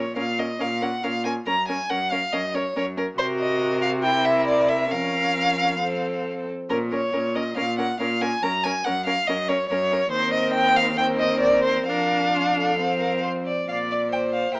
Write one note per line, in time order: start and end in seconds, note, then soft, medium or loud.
0.00 0.12 A#2 medium
0.00 0.16 C#5 soft
0.16 0.55 A#2 soft
0.16 0.24 C#4 soft
0.16 0.24 A#4 soft
0.16 0.41 F5 medium
0.38 0.46 C#4 soft
0.38 0.46 A#4 soft
0.38 0.62 D#5 medium
0.59 0.99 A#2 soft
0.59 0.67 C#4 soft
0.59 0.68 A#4 soft
0.59 0.84 F5 medium
0.81 0.90 C#4 soft
0.81 0.89 A#4 soft
0.81 1.05 F#5 medium
1.03 1.42 A#2 soft
1.03 1.12 C#4 soft
1.03 1.11 A#4 soft
1.03 1.24 F5 medium
1.25 1.33 C#4 soft
1.25 1.33 A#4 soft
1.25 1.33 G#5 medium
1.46 1.85 F#2 medium
1.46 1.55 C#4 soft
1.46 1.54 A#4 soft
1.46 1.68 A#5 medium
1.68 1.77 C#4 soft
1.68 1.76 A#4 soft
1.68 1.91 G#5 medium
1.90 2.28 F#2 medium
1.90 1.98 C#4 soft
1.90 1.98 A#4 soft
1.90 2.13 F#5 medium
2.11 2.19 C#4 soft
2.11 2.20 A#4 soft
2.11 2.34 F5 medium
2.33 2.71 F#2 medium
2.33 2.41 C#4 soft
2.33 2.41 A#4 soft
2.33 2.56 D#5 medium
2.54 2.62 C#4 soft
2.54 2.63 A#4 soft
2.54 2.76 C#5 medium
2.76 3.14 F#2 medium
2.76 2.84 C#4 soft
2.76 2.84 A#4 soft
2.76 2.85 C#5 medium
2.97 3.05 C#4 soft
2.97 3.06 A#4 soft
2.97 3.06 A#4 medium
3.18 4.93 C3 medium
3.18 4.05 F#4 medium
3.18 3.99 A#4 medium
3.18 3.26 C5 medium
3.39 3.81 D#5 medium
3.82 3.90 F5 medium
4.03 4.90 E4 medium
4.03 4.89 A#4 medium
4.03 4.27 G5 medium
4.25 4.47 E5 medium
4.48 4.71 D5 medium
4.69 4.92 E5 medium
4.90 6.49 F2 medium
4.90 5.79 C#4 soft
4.90 5.78 A#4 medium
4.90 6.25 F5 medium
5.80 6.48 C4 soft
5.80 6.47 A4 soft
6.70 7.08 A#2 medium
6.70 6.78 C#4 soft
6.70 6.78 A#4 soft
6.70 6.78 A#4 medium
6.91 6.99 C#4 soft
6.91 7.00 A#4 soft
6.91 7.37 C#5 medium
7.13 7.52 A#2 medium
7.13 7.22 C#4 soft
7.13 7.21 A#4 soft
7.35 7.43 C#4 soft
7.35 7.43 A#4 soft
7.35 7.57 D#5 medium
7.56 7.95 A#2 medium
7.56 7.64 C#4 soft
7.56 7.64 A#4 medium
7.56 7.78 F5 medium
7.78 7.86 C#4 soft
7.78 7.87 A#4 soft
7.78 8.00 F#5 medium
8.00 8.37 A#2 medium
8.00 8.08 C#4 soft
8.00 8.08 A#4 soft
8.00 8.23 F5 medium
8.21 8.29 C#4 soft
8.21 8.29 A#4 soft
8.21 8.44 G#5 medium
8.43 8.80 F#2 medium
8.43 8.51 C#4 soft
8.43 8.51 A#4 medium
8.43 8.65 A#5 medium
8.63 8.73 C#4 soft
8.63 8.73 A#4 soft
8.63 8.86 G#5 medium
8.85 9.22 F#2 medium
8.85 8.94 C#4 soft
8.85 8.93 A#4 soft
8.85 9.05 F#5 medium
9.06 9.15 C#4 soft
9.06 9.14 A#4 soft
9.06 9.29 F5 medium
9.27 9.65 F#2 medium
9.27 9.36 C#4 medium
9.27 9.36 A#4 medium
9.27 9.50 D#5 medium
9.49 9.57 C#4 soft
9.49 9.57 A#4 soft
9.49 9.69 C#5 medium
9.70 10.07 F#2 medium
9.70 9.79 C#4 soft
9.70 9.79 A#4 medium
9.70 10.11 C#5 medium
9.91 9.99 C#4 soft
9.91 10.00 A#4 soft
10.12 11.84 D#2 medium
10.12 10.94 C4 medium
10.12 10.95 A#4 medium
10.12 10.33 C5 medium
10.34 10.53 D#5 medium
10.54 10.78 G5 medium
10.76 10.97 F5 medium
10.98 11.90 C4 medium
10.98 11.86 A#4 medium
10.98 11.06 G5 medium
11.19 11.40 D#5 medium
11.41 11.64 D5 medium
11.64 11.87 C5 medium
11.88 13.45 F2 medium
11.88 12.78 D4 medium
11.88 12.29 A#4 medium
11.88 13.21 F5 medium
12.34 12.42 F4 medium
12.56 12.99 A4 medium
12.79 13.47 C4 medium
13.00 13.23 A#4 medium
13.23 13.31 C5 medium
13.46 13.68 D5 medium
13.69 14.51 A#2 soft
13.69 14.09 D5 soft
13.69 14.52 D5 soft
13.69 13.77 F5 medium
13.91 13.99 D5 medium
14.12 14.56 C5 soft
14.12 14.20 G5 medium
14.33 14.54 F5 medium
14.54 14.60 A#2 soft
14.54 14.60 A#4 medium
14.54 14.60 E5 soft
14.54 14.60 G5 medium